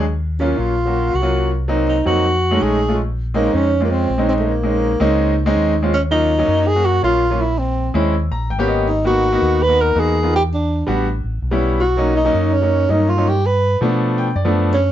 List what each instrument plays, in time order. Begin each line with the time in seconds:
Already playing: fingered electric bass D#2
0.40 grand piano F#3 A#3 C#4 F4, tenor saxophone C#4
0.58 fingered electric bass A#1, tenor saxophone F4
0.85 grand piano F#3 A#3 C#4 F#4
1.14 fingered electric bass C2, tenor saxophone F#4
1.22 grand piano F#3 A#3 C#4 F4
1.68 grand piano F#3 A#3 C4 D#4
1.88 tenor saxophone D#4
2.05 fingered electric bass F2, grand piano F#3 A#3 C4 D#4, tenor saxophone F#4
2.51 grand piano G#3 A3 C#4 D#4
2.61 fingered electric bass A#1, tenor saxophone G#4
2.88 grand piano G#3 A3 C#4 F4
3.34 grand piano G#3 C4 C#4 D#4, tenor saxophone A#3
3.54 fingered electric bass F2, tenor saxophone C#4
3.80 grand piano G#3 C4 C#4 F4, tenor saxophone A#3
3.91 tenor saxophone C4
4.09 fingered electric bass A#1
4.18 grand piano G#3 C4 C#4 D#4
4.29 tenor saxophone C4
4.39 tenor saxophone A3
4.47 tenor saxophone A#3
4.63 grand piano G#3 C4 C#4 D#4
5.00 fingered electric bass C#2, grand piano G#3 C4 C#4 D#4
5.46 grand piano G#3 C4 C#4 D#4
5.55 fingered electric bass D#2
5.83 grand piano G#3 C4 C#4 F4
5.94 tenor saxophone C#4
6.11 grand piano F#3 A#3 C#4 F4, tenor saxophone D#4
6.38 grand piano F#3 A#3 C#4 D#4
6.48 fingered electric bass F#2
6.67 tenor saxophone G#4
6.75 grand piano F#3 A#3 C#4 F#4
6.85 tenor saxophone F#4
7.03 fingered electric bass A#1, grand piano F#3 A#3 C#4 F4, tenor saxophone F4
7.30 grand piano F#3 A#3 C#4 F4
7.41 tenor saxophone E4
7.58 tenor saxophone C4
7.94 fingered electric bass D#2, grand piano G#3 C4 C#4 E4
8.31 fingered electric bass A#1, grand piano A#5
8.50 fingered electric bass G#1, grand piano G5
8.59 grand piano A#3 B3 C#4 G4
8.68 grand piano D#5
8.88 tenor saxophone D#4
9.05 grand piano A#3 B3 D#4 F#4, tenor saxophone F#4
9.32 grand piano A#3 B3 D#4 F#4
9.42 fingered electric bass D#2
9.62 tenor saxophone B4
9.68 grand piano A#3 B3 D#4 F#4
9.81 tenor saxophone A#4
9.95 fingered electric bass E2, grand piano A#3 B3 D#4 F#4
10.00 tenor saxophone G#4
10.23 grand piano A#3 B3 D#4 F4
10.35 tenor saxophone G4
10.54 tenor saxophone D4
10.87 fingered electric bass A1, grand piano G3 B3 D4 F#4
11.24 fingered electric bass A1
11.42 fingered electric bass B1
11.51 grand piano G3 B3 C#4 E4
11.80 tenor saxophone F#4
11.97 grand piano F#3 A#3 C#4 D#4
12.16 tenor saxophone D#4
12.25 grand piano F#3 A#3 C#4 D#4
12.34 fingered electric bass F#2
12.53 tenor saxophone C#4
12.62 grand piano F#3 A#3 C#4 D#4
12.89 fingered electric bass G2, grand piano F#3 A#3 C#4 D#4, tenor saxophone D#4
13.09 tenor saxophone F4
13.17 grand piano F#3 A#3 C#4 D#4
13.29 tenor saxophone G4
13.46 tenor saxophone B4
13.81 fingered electric bass B2, grand piano F3 A3 B3 D4
14.18 grand piano G5
14.35 fingered electric bass F#2, grand piano D5
14.45 grand piano F3 A3 B3 D4
14.73 tenor saxophone C#4